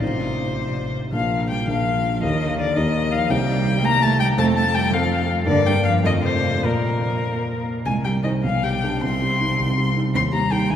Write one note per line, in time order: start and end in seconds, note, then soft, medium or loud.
0.00 1.09 A1 soft
0.00 0.93 C3 soft
0.00 1.09 C4 soft
0.00 1.10 D#4 soft
0.00 1.10 F4 soft
0.00 0.92 C5 medium
1.12 1.66 A#1 soft
1.12 1.52 F3 medium
1.12 1.66 A#3 soft
1.12 1.67 D4 soft
1.12 1.67 F4 soft
1.12 1.47 F5 medium
1.50 1.69 G3 soft
1.50 1.68 G5 medium
1.67 2.21 A#1 soft
1.67 2.25 F3 medium
1.67 2.21 A#3 soft
1.67 2.21 D4 soft
1.67 2.22 F4 soft
1.67 2.22 F5 medium
2.22 2.75 D#2 soft
2.22 2.61 D#3 medium
2.22 2.75 A#3 soft
2.22 2.75 D#4 soft
2.22 2.76 G4 soft
2.22 2.59 D#5 medium
2.59 2.79 D3 medium
2.59 2.78 D5 medium
2.76 3.29 D#2 soft
2.76 3.15 D#3 medium
2.76 3.30 A#3 soft
2.76 3.30 D#4 soft
2.76 3.30 G4 soft
2.76 3.13 D#5 medium
3.12 3.32 F3 medium
3.12 3.32 F5 medium
3.30 4.35 C2 soft
3.30 3.86 G3 medium
3.30 4.35 C4 soft
3.30 4.36 D#4 soft
3.30 4.36 G4 soft
3.30 3.86 G5 medium
3.84 4.03 A#3 medium
3.84 4.03 A#5 loud
4.02 4.23 A3 medium
4.02 4.19 A5 medium
4.20 4.38 G3 medium
4.20 4.27 G5 medium
4.37 4.91 F2 medium
4.37 4.57 A3 medium
4.37 4.91 C4 soft
4.37 4.91 F4 soft
4.37 4.91 A4 soft
4.37 4.46 A5 medium
4.57 4.64 A3 medium
4.57 4.76 A5 medium
4.75 4.95 G3 medium
4.75 4.95 G5 medium
4.92 5.45 F2 medium
4.92 5.30 F3 medium
4.92 5.46 C4 soft
4.92 5.46 F4 soft
4.92 5.46 A4 soft
4.92 5.30 F5 medium
5.46 6.02 G2 medium
5.46 5.65 D3 medium
5.46 6.02 A#3 soft
5.46 6.03 A#4 soft
5.46 5.68 D5 medium
5.46 6.03 D5 soft
5.66 5.74 G3 medium
5.66 5.84 G5 medium
5.84 6.04 F3 medium
5.84 5.92 F5 medium
6.03 6.62 F2 soft
6.03 6.26 D#3 medium
6.03 6.62 A3 soft
6.03 6.62 F4 soft
6.03 6.63 D#5 soft
6.03 6.13 D#5 medium
6.23 6.66 C3 medium
6.23 6.67 C5 medium
6.63 7.81 A#2 soft
6.63 7.66 A#2 medium
6.63 7.82 A#3 soft
6.63 7.82 F4 soft
6.63 7.66 A#4 medium
6.63 7.82 D5 soft
7.85 8.42 C2 soft
7.85 8.03 G#3 medium
7.85 7.93 G#5 medium
8.04 8.22 G3 soft
8.04 8.36 G3 soft
8.04 8.12 G5 soft
8.23 8.31 D#3 soft
8.23 8.42 D#4 soft
8.23 8.42 C5 soft
8.23 8.31 D#5 medium
8.42 9.01 B1 soft
8.42 8.50 F3 medium
8.42 8.65 F5 medium
8.62 9.01 G3 soft
8.62 8.95 G3 soft
8.62 9.03 G5 medium
8.84 9.01 D4 soft
8.84 9.01 G4 soft
9.02 9.58 C2 soft
9.02 9.94 C4 medium
9.02 9.95 C6 medium
9.22 9.52 G3 soft
9.40 9.70 D#4 soft
9.59 10.13 C2 soft
9.78 10.07 G3 soft
9.97 10.15 D#4 soft
10.14 10.68 D#2 soft
10.14 10.21 C4 medium
10.14 10.23 C6 medium
10.33 10.63 G3 soft
10.33 10.50 A#3 soft
10.33 10.54 A#5 medium
10.50 10.71 G3 soft
10.50 10.68 D#4 soft
10.50 10.69 G4 soft
10.50 10.72 G5 medium
10.69 10.76 D2 soft
10.69 10.76 G#3 medium
10.69 10.76 G#5 medium